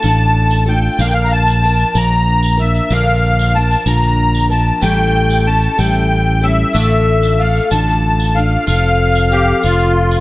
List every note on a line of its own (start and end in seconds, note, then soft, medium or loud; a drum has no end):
0.00 0.88 A1 medium
0.00 0.68 D4 medium
0.00 0.67 F4 medium
0.00 0.65 A4 medium
0.00 0.64 A5 loud
0.00 tambourine medium
0.05 0.68 A2 medium
0.05 0.68 D3 medium
0.05 0.68 A3 medium
0.51 tambourine medium
0.66 0.99 A3 medium
0.66 0.99 D4 medium
0.66 0.99 F4 medium
0.66 0.99 A4 medium
0.66 1.01 G5 medium
0.66 tambourine soft
0.99 1.83 A#1 medium
0.99 1.63 A#2 medium
0.99 1.63 D3 medium
0.99 1.61 F3 medium
0.99 1.63 A#3 medium
0.99 1.64 D4 medium
0.99 1.65 A#4 medium
0.99 1.07 F5 loud
0.99 tambourine medium
1.07 1.13 G5 medium
1.13 1.32 F5 loud
1.24 1.31 A#5 medium
1.31 1.97 A5 loud
1.31 tambourine soft
1.47 tambourine medium
1.62 1.94 F3 medium
1.62 1.94 A#3 medium
1.62 1.94 D4 medium
1.62 1.93 A#4 medium
1.79 tambourine soft
1.95 2.79 A#1 medium
1.95 2.60 A#2 medium
1.95 2.60 D3 medium
1.95 2.59 F3 medium
1.95 2.58 A#3 medium
1.95 2.57 D4 medium
1.95 2.56 A#4 medium
1.95 2.61 A#5 loud
1.95 tambourine medium
2.43 tambourine medium
2.57 2.90 F3 soft
2.57 2.90 A#3 soft
2.57 2.91 D4 soft
2.57 2.90 A#4 medium
2.57 2.92 E5 medium
2.57 tambourine soft
2.75 tambourine soft
2.90 3.75 A#1 medium
2.90 3.54 A#2 medium
2.90 3.55 D3 medium
2.90 3.53 F3 medium
2.90 3.54 A#3 medium
2.90 3.55 D4 medium
2.90 3.56 A#4 medium
2.90 3.57 F5 loud
2.90 tambourine medium
3.39 tambourine medium
3.54 3.86 F3 medium
3.54 3.85 A#3 medium
3.54 3.85 D4 medium
3.54 3.84 A#4 medium
3.54 3.88 A5 loud
3.71 tambourine soft
3.86 4.70 A#1 medium
3.86 4.51 A#2 soft
3.86 4.51 D3 medium
3.86 4.51 F3 medium
3.86 4.50 A#3 soft
3.86 4.49 D4 medium
3.86 4.48 A#4 medium
3.86 4.46 A#5 medium
3.86 tambourine medium
4.02 tambourine soft
4.34 tambourine medium
4.49 4.82 F3 soft
4.49 4.82 A#3 medium
4.49 4.83 D4 medium
4.49 4.82 A#4 medium
4.49 4.80 A5 medium
4.49 tambourine soft
4.81 5.67 A1 medium
4.81 5.46 A2 medium
4.81 5.46 E3 medium
4.81 5.45 G3 medium
4.81 5.46 C#4 medium
4.81 5.47 E4 medium
4.81 5.48 A4 medium
4.81 5.49 G5 loud
4.81 tambourine medium
5.30 tambourine medium
5.46 5.78 G3 soft
5.46 5.77 C#4 medium
5.46 5.77 E4 medium
5.46 5.76 A4 medium
5.46 5.80 A5 loud
5.62 tambourine soft
5.78 6.63 A1 medium
5.78 6.43 A2 medium
5.78 6.43 E3 medium
5.78 6.43 G3 medium
5.78 6.42 C#4 medium
5.78 6.41 E4 medium
5.78 6.41 A4 medium
5.78 6.45 G5 medium
5.78 tambourine medium
5.94 tambourine soft
6.41 6.74 G3 soft
6.41 6.74 C#4 medium
6.41 6.75 E4 medium
6.41 6.74 A4 medium
6.41 7.42 E5 medium
6.41 tambourine soft
6.73 7.59 A1 medium
6.73 7.38 A2 medium
6.73 7.39 D3 medium
6.73 7.38 A3 medium
6.73 7.38 D4 medium
6.73 7.40 F4 medium
6.73 7.41 A4 medium
6.73 tambourine medium
7.23 tambourine medium
7.38 7.71 A3 medium
7.38 7.70 D4 medium
7.38 7.70 F4 medium
7.38 7.69 A4 medium
7.38 7.69 F5 medium
7.55 tambourine soft
7.70 8.56 A1 medium
7.70 8.36 A2 medium
7.70 8.36 D3 medium
7.70 8.37 A3 medium
7.70 8.35 D4 medium
7.70 8.35 F4 medium
7.70 8.34 A4 medium
7.70 8.37 A5 medium
7.70 tambourine loud
7.88 tambourine soft
8.19 tambourine medium
8.35 8.66 A3 soft
8.35 8.67 D4 medium
8.35 8.67 F4 medium
8.35 8.67 A4 medium
8.35 8.65 F5 medium
8.35 tambourine soft
8.66 9.52 F1 medium
8.66 9.30 F3 medium
8.66 9.31 C4 medium
8.66 9.32 F4 medium
8.66 9.32 A4 medium
8.66 9.92 F5 loud
8.66 tambourine medium
9.15 tambourine medium
9.31 9.63 F3 medium
9.31 9.63 C4 medium
9.31 9.62 F4 medium
9.31 9.62 G4 loud
9.31 9.61 A4 medium
9.31 tambourine soft
9.63 10.20 F1 medium
9.63 10.20 F3 medium
9.63 10.20 C4 medium
9.63 10.20 F4 medium
9.63 10.20 A4 medium
9.63 tambourine medium
9.79 tambourine soft
10.11 tambourine medium